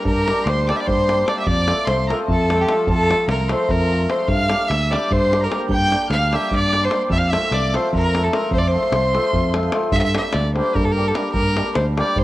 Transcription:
Already playing: G3
0.04 G2 A#4 A#5, davul low
0.28 G3 A#3 D4 G4, davul high
0.39 davul high
0.44 D2 C6, davul high
0.49 C5
0.67 G3 A#3 D4 G4 D5 D6, davul high
0.72 E6
0.76 D5 E5 D6
0.85 G2 C5 C6, davul low
1.07 G3 A#3 D4 G4, davul high
1.26 G3 A#3 D4 G4 D5 D6, davul high
1.38 E5 E6
1.45 F2 D5 D6, davul low
1.67 F3 A3 C4 F4, davul high
1.78 davul high
1.85 C2 C5 C6, davul high
2.08 F3 A3 C4 F4 A#4 A#5, davul high
2.27 F2 A5, davul low
2.32 A4
2.50 F3 A3 C4 F4, davul high
2.57 G5
2.61 G4 A5
2.69 F3 A3 C4 F4 A4, davul high
2.85 F2 A5, davul low
2.89 A4
3.09 F3 A3 C4 F4, davul high
3.27 C2 A#4 A#5, davul high
3.40 davul high
3.48 F3 A3 C4 F4 C5 C6, davul high
3.69 F2 A#4 A#5, davul low
3.91 F3 A3 C4 F4
4.01 davul high
4.08 F3 A3 C4 F4 C5 C6, davul high
4.20 davul high
4.28 G2 F5 F6, davul low
4.49 G3 A#3 D4 G4, davul high
4.60 davul high
4.68 D2 E5 E6, davul high
4.90 G3 A#3 D4 G4 D5, davul high
4.95 D6
5.11 G2 C5 C6, davul low
5.30 G3 A#3 D4 G4, davul high
5.41 A#4 A#5
5.50 G3 A#3 D4 G4, davul high
5.69 G2 G5 G6, davul low
5.90 G3 A#3 D4 G4, davul high
6.02 davul high
6.10 D2 F5 F6, davul high
6.31 G3 A#3 D4 G4 E6, davul high
6.35 E5
6.51 G2 D5 D6, davul low
6.72 G3 A#3 D4 G4, davul high
6.83 C5 C6
6.91 G3 A#3 D4 G4, davul high
7.10 F2 E5 E6, davul low
7.18 F5 F6
7.28 E5 E6
7.32 F3 A3 C4 F4, davul high
7.43 davul high
7.51 C2 D5 D6, davul high
7.73 F3 A3 C4 F4 C5 C6, davul high
7.93 F2 A#4, davul low
7.98 A#5
8.14 F3 A3 C4 F4, davul high
8.24 A4 A5
8.33 F3 A3 C4 F4 A#4 A#5, davul high
8.51 F2 C5, davul low
8.56 D5 C6
8.63 D6
8.68 C5 C6
8.73 F3 A3 C4 F4
8.83 davul high
8.92 C2, davul high
9.04 davul high
9.14 F3 A3 C4 F4, davul high
9.24 davul high
9.33 F2, davul low
9.44 davul high
9.54 F3 A3 C4 F4, davul high
9.63 davul high
9.72 F3 A3 C4 F4, davul high
9.83 davul high
9.92 G2 E5, davul low
10.00 E5
10.04 E5
10.14 G3 A#3 D4 G4 E5, davul high
10.24 davul high
10.33 D2 D5, davul high
10.54 G3 A#3 D4 G4 C5, davul high
10.75 G2 A#4, davul low
10.85 A4
10.92 A#4
10.96 G3 A#3 D4 G4
11.08 A4
11.14 G3 A#3 D4 G4 A#4, davul high
11.32 G2 A#4, davul low
11.56 G3 A#3 D4 G4, davul high
11.66 davul high
11.75 D2 C5, davul high
11.97 G3 A#3 D4 G4 D5, davul high
12.16 G2 C5, davul low

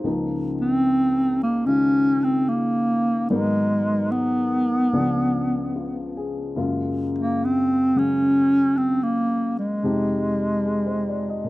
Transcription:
Already playing: C5
0.04 C#2 C#3 F3 A#3 D#4
0.61 C4
1.43 A#3
1.65 C#3 D#3 G#3 C#4 F4
2.24 C4
2.48 A#3
3.30 G#2 D#3 F#3 G#3 B3 A#4
4.11 B3
4.93 C#2 C#3 F3 B3 D4
5.76 F4
6.17 G#4
6.55 F#2 C#3 G#3 A#3 F4
7.18 A#3
7.44 C4
7.95 C#3 F#3 G#3 C#4
8.77 C4
9.03 A#3
9.59 G#3
9.83 F2 C3 G#3 D#4 G4
10.65 G#4
10.86 C5
11.09 D5
11.29 D#5
11.44 A#2 A#3

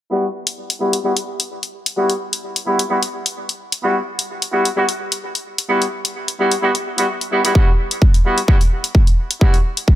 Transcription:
0.11 G3 B3 E4 F#4
0.47 closed hi-hat
0.70 closed hi-hat
0.81 G3 B3 E4 F#4
0.93 closed hi-hat
1.04 G3 B3 E4 F#4
1.17 closed hi-hat
1.40 closed hi-hat
1.63 closed hi-hat
1.86 closed hi-hat
1.97 G3 B3 E4 F#4
2.10 closed hi-hat
2.33 closed hi-hat
2.56 closed hi-hat
2.67 G3 B3 E4 F#4
2.79 closed hi-hat
2.90 G3 B3 E4 F#4
3.03 closed hi-hat
3.26 closed hi-hat
3.49 closed hi-hat
3.72 closed hi-hat
3.83 G3 B3 E4 F#4
4.19 closed hi-hat
4.42 closed hi-hat
4.53 G3 B3 E4 F#4
4.65 closed hi-hat
4.76 G3 B3 E4 F#4
4.89 closed hi-hat
5.12 closed hi-hat
5.35 closed hi-hat
5.58 closed hi-hat
5.69 G3 B3 E4 F#4
5.82 closed hi-hat
6.05 closed hi-hat
6.28 closed hi-hat
6.39 G3 B3 E4 F#4
6.51 closed hi-hat
6.62 G3 B3 E4 F#4
6.75 closed hi-hat
6.98 G3 B3 E4 F#4, closed hi-hat
7.21 closed hi-hat
7.32 G3 B3 E4 F#4
7.45 G3 B3 E4 F#4, closed hi-hat
7.55 G3 B3 E4 F#4, kick
7.91 closed hi-hat
8.02 kick
8.14 closed hi-hat
8.25 G3 B3 E4 F#4
8.38 closed hi-hat
8.48 G3 B3 E4 F#4, kick
8.61 closed hi-hat
8.84 closed hi-hat
8.95 kick
9.07 closed hi-hat
9.31 closed hi-hat
9.41 G3 B3 E4 F#4, kick
9.54 closed hi-hat
9.77 closed hi-hat
9.88 kick

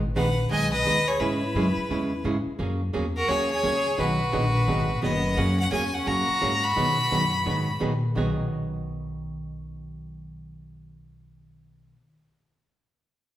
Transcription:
Already playing: G#1
0.16 A#1 D#3 G#3 B3 D#4 G#4 B4 F#5
0.50 B1 D#3 G#3 B3 D#4 G#4 D#5 G#5
0.73 B4 D#5
0.85 D#2 D#3 G#3 B3 D#4 G#4
1.08 G#4 C#5
1.20 G#2 C#3 G#3 C#4 E4 G#4 B4
1.55 F#2 C#3 G#3 C#4 E4 G#4
1.77 muted upright bass stroke
1.90 E2 C#3 G#3 C#4 E4 G#4
2.24 G#2 C#3 G#3 C#4 E4 G#4
2.46 muted upright bass stroke
2.59 F#2 F#3 A#3 C#4 G#4
2.93 E2 F#3 A#3 C#4 G#4
3.17 F#4 A#4
3.28 D#2 F#3 A#3 C#4 G#4 C#5
3.51 G#4 C#5
3.63 C#2 F#3 A#3 C#4 G#4
3.98 B1 B2 D#3 F#3 B3 D#4 F#4 G#4 B4
4.32 A#1 B2 D#3 F#3 B3 D#4 G#4
4.67 G#1 B2 D#3 F#3 B3 D#4 G#4
5.02 F#1 B2 D#3 F#3 B3 D#4 G#4 D#5
5.37 F#2 F#3 A#3 C#4 G#4 F#5
5.60 C#4 F#5
5.71 E2 F#3 A#3 C#4 G#4 G#5
5.94 C#4 F#5
6.06 F#2 F#3 A#3 C#4 F#4 G#4 A#5
6.29 muted upright bass stroke
6.41 G#2 F#3 A#3 C#4 G#4
6.63 F#4 B5
6.76 B2 D#3 F#3 B3 D#4 G#4
7.11 F#2 B2 D#3 F#3 B3 D#4 G#4
7.45 G#2 B2 D#3 F#3 B3 D#4 G#4
7.80 A#2 B2 D#3 F#3 B3 D#4 G#4
8.15 B1 B2 D#3 F#3 B3 D#4 G#4

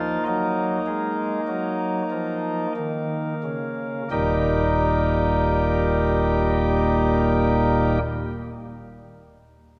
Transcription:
Already playing: F3 A#3 D#4 F4
0.27 F#3 D#4
0.87 G#3
1.48 F#3
2.11 F3
2.77 D#3
3.44 C#3
4.11 D#1 D#2 A#2 G3 A#3 D#4 G4

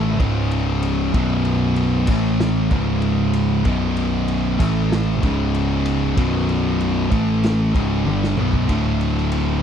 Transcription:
Already playing: A1 A2 E3 A3
0.19 C#1 C#2 G#2 C#3, kick, ride
0.51 ride
0.82 ride
1.14 B0 B1 F#2 B2, kick, ride
1.45 ride
1.76 ride
2.07 A1 A2 E3 A3, kick, crash
2.40 snare
2.71 C#1 C#2 G#2 C#3, kick, ride
3.02 ride
3.33 ride
3.64 B0 B1 F#2 B2, kick, ride
3.97 ride
4.28 ride
4.59 A1 A2 E3 A3, kick, crash
4.92 snare
5.23 C#1 C#2 G#2 C#3, kick, ride
5.54 ride
5.85 ride
6.17 B0 B1 F#2 B2, kick, ride
6.49 ride
6.80 ride
7.11 A1 A2 E3 A3, kick, ride
7.43 snare, ride
7.75 C#1 C#2 G#2 C#3, kick, ride
8.05 G1 G2 D3 G3, high tom
8.24 snare
8.36 B0 B1 F#2 B2, mid tom
8.53 kick
8.69 D1 D2 A2 D3, kick, crash, ride
9.01 ride
9.17 snare
9.32 ride

